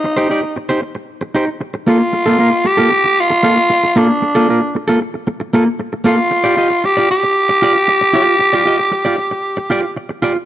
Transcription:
X:1
M:4/4
L:1/16
Q:1/4=115
K:Eblyd
V:1 name="Clean electric guitar"
z [EGc] [EGd] z2 [EGc] z4 [EGc] z3 [B,FA] z | z [B,FA] [B,FB] z2 [B,FA] z4 [B,FA] z3 [B,FA] z | z [B,FA] [B,FB] z2 [B,FA] z4 [B,FA] z3 [B,FA] z | z [FGd] [FGe] z2 [FGd] z4 [FGd] z3 [FGd]2 |
z [FGd] [FGe] z2 [FGd] z4 [FGd] z3 [FGd] z |]
V:2 name="Tenor saxophone"
E4 z8 z2 F2- | F4 G4 F6 D2- | D4 z8 z2 F2- | F4 G2 G8- G2- |
G12 z4 |]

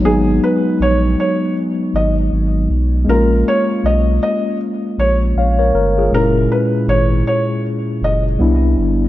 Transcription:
X:1
M:4/4
L:1/16
Q:"Swing 16ths" 1/4=79
K:A#phr
V:1 name="Felt piano"
G2 B2 c2 c2 z2 d z4 z | A2 c2 d2 d2 z2 c z4 z | A2 B2 c2 c2 z2 d z4 z |]
V:2 name="Tine electric piano"
z16 | z12 [ce] [Ac] A [EG]- | [EG] z12 z3 |]
V:3 name="Tine electric piano"
[F,G,B,D]16 | [G,A,CE]16 | [A,,G,C=E]12 [=G,B,=DE]4 |]
V:4 name="Sub bass" clef=bass
G,,,2 z2 A,,,2 z4 G,,,2 G,,,2 B,,,2 | A,,,2 z2 B,,,2 z4 A,,,2 A,,,2 =G,,,2 | F,,,2 z2 G,,,2 z4 F,,,2 =C,,2 =G,,,2 |]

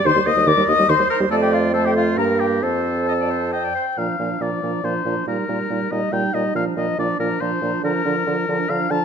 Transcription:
X:1
M:3/4
L:1/16
Q:1/4=140
K:Bb
V:1 name="Flute"
c'2 e'2 d'2 e'2 c'2 b2 | a g f2 a g f2 b2 g2 | a8- a2 z2 | b2 b2 b2 b2 b2 b2 |
b2 b2 b2 b2 b2 b2 | b2 b2 b2 b2 b2 b2 | b2 b2 b2 b2 b2 b2 |]
V:2 name="Oboe"
c2 e2 d2 e2 c2 B2 | A G F2 A G F2 B2 G2 | A8 g4 | f4 d4 c4 |
B6 e2 g2 e2 | f2 e2 d2 B2 c4 | B8 f2 a2 |]
V:3 name="Clarinet"
c4 B4 c4 | d4 c4 B4 | c4 e d c2 e d c2 | D2 D2 D2 D2 D2 D2 |
E2 E2 E2 E2 E2 E2 | D2 D2 D2 D2 D2 D2 | D2 D2 D2 D2 D2 D2 |]
V:4 name="French horn" clef=bass
E, G, B, G, E, G, B, G, E, G, z G, | A,4 A,4 B,4 | C8- C2 z2 | F,2 F,2 F,2 F,2 F,2 F,2 |
G,2 G,2 G,2 G,2 G,2 G,2 | F,2 F,2 F,2 F,2 F,2 F,2 | F,2 F,2 F,2 F,2 F,2 F,2 |]
V:5 name="Bassoon" clef=bass
E,, E,, E,, E,, E,, E,, E,, E,, E,, E,, z E,, | F,,8 G,,4 | F,,8- F,,2 z2 | B,,2 B,,2 B,,2 B,,2 B,,2 B,,2 |
B,,2 B,,2 B,,2 B,,2 B,,2 B,,2 | B,,2 B,,2 B,,2 B,,2 B,,2 B,,2 | D,2 D,2 D,2 D,2 D,2 D,2 |]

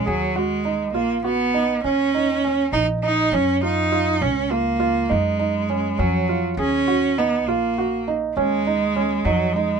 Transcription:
X:1
M:11/8
L:1/16
Q:1/4=101
K:Ebm
V:1 name="Felt piano"
A2 G2 E2 F2 G2 E2 D2 E2 D2 E2 E2 | D2 F2 F2 D2 F2 F2 E2 E2 D2 D2 F2 | A2 G2 E2 F2 G2 E2 D2 E2 D2 E2 E2 |]
V:2 name="Cello"
G,2 A,4 B,2 C4 D6 E2 E2 | D2 E4 D2 B,4 A,6 G,3 z | D4 C2 B,4 z2 A,6 G,2 A,2 |]
V:3 name="Upright bass" clef=bass
E,,6 B,,,6 E,,6 B,,,4 | G,,6 D,,6 G,,6 F,,4 | E,,6 B,,,6 E,,6 F,,4 |]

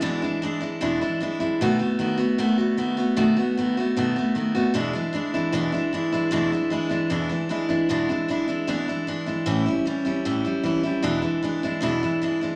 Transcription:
X:1
M:4/4
L:1/8
Q:1/4=153
K:Emix
V:1 name="Steel-string acoustic guitar"
[E,,B,,E,G,DE] [E,G,DE] [E,G,DE] [E,G,DE] [E,,B,,E,G,DE] [E,G,DE] [E,G,DE] [E,G,DE] | [B,,^D,A,B,F] [A,B,F] [D,A,B,F] [A,B,F] [B,,D,A,B,F] [A,B,F] [D,A,B,F] [A,B,F] | [B,,^D,A,B,F] [A,B,F] [D,A,B,F] [A,B,F] [B,,D,A,B,F] [A,B,F] [D,A,B,F] [A,B,F] | [E,,B,,E,G,DE] [E,G,DE] [E,G,DE] [E,G,DE] [E,,B,,E,G,DE] [E,G,DE] [E,G,DE] [E,G,DE] |
[E,,B,,E,G,DE] [E,G,DE] [E,G,DE] [E,G,DE] [E,,B,,E,G,DE] [E,G,DE] [E,G,DE] [E,G,DE] | [E,,B,,E,G,DE] [E,G,DE] [E,G,DE] [E,G,DE] [E,,B,,E,G,DE] [E,G,DE] [E,G,DE] [E,G,DE] | [A,,E,=G,CE] [G,CE] [E,G,CE] [G,CE] [A,,E,G,CE] [G,CE] [E,G,CE] [G,CE] | [E,,B,,E,G,DE] [E,G,DE] [E,G,DE] [E,G,DE] [E,,B,,E,G,DE] [E,G,DE] [E,G,DE] [E,G,DE] |]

